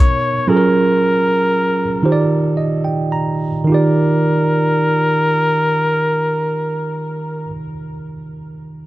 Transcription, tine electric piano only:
Already playing: B2 B3 D#4 A#4 C#5
0.47 F#3 C#4 F4 G#4 A4
0.57 A#4
2.03 D#3 D#4 F4 G4 C5
2.12 D5
2.57 D#5
2.84 G5
3.12 A#5
3.64 D#3 D#4
3.69 F4 G4
3.74 D5

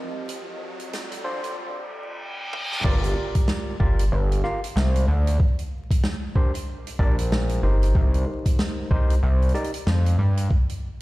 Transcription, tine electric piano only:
1.24 D4 F4 A4 C5
2.84 F4 G4 A#4 D5
3.80 F4 G4 A#4 D5
4.44 F4 G4 A#4 F5
6.35 D4 G4 A#4 C5
6.99 D4 G4 A#4 D5
7.63 D#4 G4 A#4 C5
8.91 D#4 G4 A#4 C5
9.54 D#4 G4 A#4 D5

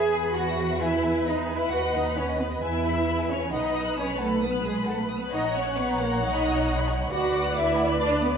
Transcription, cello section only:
Already playing: G#4
0.36 F#4
0.81 E4
1.26 D#4
1.57 E4
1.71 F#4
1.95 D#4
2.17 C#4
2.40 B3
2.63 E4
3.31 C#4
3.53 D#4
3.98 C#4
4.21 A3
4.43 B3
4.66 G#3
4.88 A3
5.19 B3
5.33 D#4
5.55 C#4
5.78 B3
6.00 A#3
6.24 D#4
7.12 F#4
7.56 E4
8.01 D4
8.23 B3

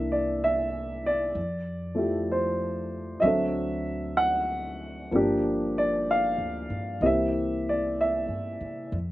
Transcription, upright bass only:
Already playing: C2
1.35 F2
3.23 D2
5.12 G1
6.38 D2
6.70 G2
7.01 C2
8.28 G2
8.61 C3
8.92 F2

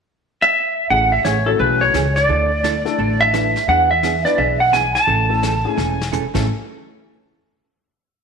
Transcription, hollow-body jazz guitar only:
0.90 C#3 E3 A3 C#4 G#4
1.25 C#3 E3 A3 C#4 G#4
1.60 C#3 E3 A3 C#4 G#4
1.94 C#3 E3 A3 C#4 G#4
2.29 D3 A3 D4 E4 A4
2.64 D3 A3 D4 E4 A4
2.99 D3 A3 D4 E4 A4
3.34 D3 A3 D4 E4 A4
3.69 E3 B3 D4 G#4
4.03 E3 B3 D4 G#4
4.38 E3 B3 D4 G#4
4.73 E3 B3 D4 G#4
5.07 C#3 E3 A3 C#4 A4
5.42 C#3 E3 A3 C#4 A4
5.76 C#3 E3 A3 C#4 A4
6.12 C#3 E3 A3 C#4 A4
6.34 A2 C#3 E3 A3 C#4 A4

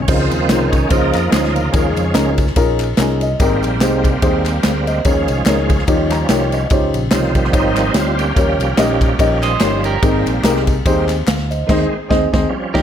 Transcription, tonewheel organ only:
0.02 C#4
0.08 D#3 F3 C4
0.69 C#4
0.89 F3 A#3 D#4
1.30 G#3
1.53 C#3 F3 A#3
1.71 F3 G#3 C#4
3.40 G3 A#3 C4
5.06 F3 G#3 C#4
5.89 F3 G3 C#4
7.12 D#3 F3 C4
7.35 D#3 F3 G3 C4
7.53 G3 C4 D#4
7.96 F4
8.18 A#3 C#4 G4
8.35 F3 G3 C#4
10.02 G3 A#3 C4
10.85 G3 A#3 C4
11.67 D#3 G#3 C4
12.49 F3 G3 C#4

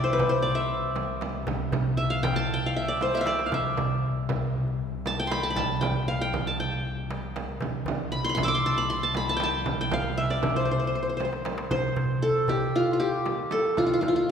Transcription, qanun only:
Already playing: D5 E5 G5
0.04 C5
0.13 B4
0.29 C5
0.42 D5
0.55 E5
1.97 E5
2.10 F5
2.23 G5
2.36 A5
2.54 G5
2.66 F5
2.76 E5
2.88 D5
3.02 C5
3.15 E5 F5
3.21 E5
3.27 D5
3.46 F5
3.54 E5
5.07 A5
5.20 G5
5.27 C6
5.31 B5
5.43 A5
5.50 B5
5.56 A5
5.81 G5
6.08 F5
6.21 G5
6.47 A5
6.60 G5
8.12 B5
8.24 C6
8.29 B5
8.35 C6
8.43 D6 E6
8.48 D6
8.55 C6
8.66 A5
8.78 B5
8.90 C6
9.03 A5
9.17 B5
9.29 A5
9.37 G5
9.43 A5
9.81 G5
9.93 F5
10.18 E5
10.30 D5
10.56 C5
10.65 C5
10.71 C5
10.80 C5
10.87 C5
10.95 C5
11.03 C5
11.10 C5
11.17 C5
11.25 C5
11.71 C5
12.22 A4
12.49 G4
12.76 F4
12.93 F4
13.00 G4
13.52 A4
13.78 F4
13.86 F4
13.94 F4
14.01 F4
14.08 F4
14.16 F4

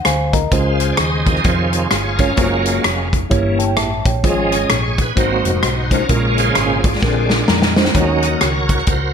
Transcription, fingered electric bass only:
0.06 D2
0.52 C#2
0.99 D#2
1.45 F2
1.92 G1
2.38 F#1
2.85 F1
3.31 G1
3.77 A1
4.06 A#1
4.24 G#1
4.71 A#1
5.17 G#1
5.45 F1
5.64 B1
6.09 A#1
6.56 G#1
7.03 A#1
7.49 F2
7.95 D#2
8.42 C#2
8.88 C#2

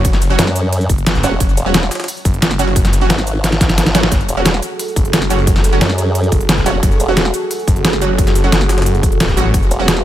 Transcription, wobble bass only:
0.39 F#2
1.23 E1
1.57 E1
3.10 G#1
4.29 E1
5.81 F#2
6.66 E1
7.00 E1
9.71 E1

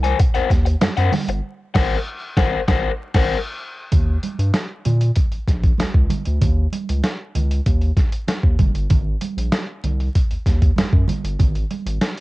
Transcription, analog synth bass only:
Already playing: C2
0.36 D#2
0.50 D#2
0.82 F#2
0.98 F#2
1.28 G1
1.75 G#1
2.37 G#1
2.68 G#1
3.14 G#1
3.92 D#2
4.39 G2
4.86 A#2
5.32 A#1
5.48 A#1
5.80 C#2
5.95 C#2
6.27 D2
6.41 D#2
6.89 C#2
7.36 C#2
7.66 D#2
8.44 D#2
8.59 F#1
8.74 G1
8.91 G#1
9.37 A#1
9.84 C2
10.31 D#2
10.46 D#2
10.78 F#2
10.93 F#2
11.24 G1
11.40 G#1
11.86 G#1

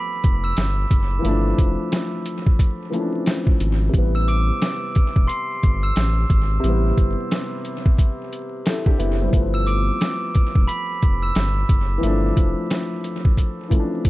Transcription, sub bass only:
0.24 F1
0.57 G1
0.91 F#1
1.24 G1
1.58 F1
3.60 G#1
3.94 A1
5.16 E1
5.63 G1
5.96 A1
6.30 G#1
6.64 A1
6.98 G1
8.99 F#1
9.33 G1
10.55 E1
11.03 F1
11.35 G1
11.69 F#1
12.03 G1
12.37 F1

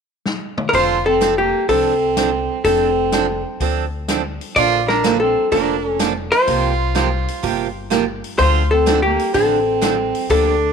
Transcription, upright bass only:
0.73 F1
1.69 C2
2.64 F1
3.60 D2
4.56 A#1
5.52 F1
6.47 C2
7.43 G1
8.39 D2
9.34 A1
10.30 D2

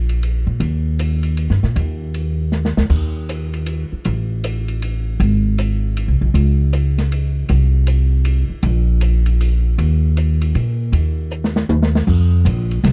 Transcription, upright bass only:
Already playing: A#1
0.47 A#2
0.60 D#2
1.50 G2
1.63 A#2
1.76 D#2
2.77 D2
2.90 D#2
3.92 muted upright bass stroke
4.05 A1
5.20 G#1
6.08 C2
6.21 A#1
6.34 C#2
7.50 C2
8.50 muted upright bass stroke
8.63 A#1
9.78 D#2
10.55 A#2
10.92 D#2
11.69 D#2
12.07 F2
12.45 A#1
12.84 C2

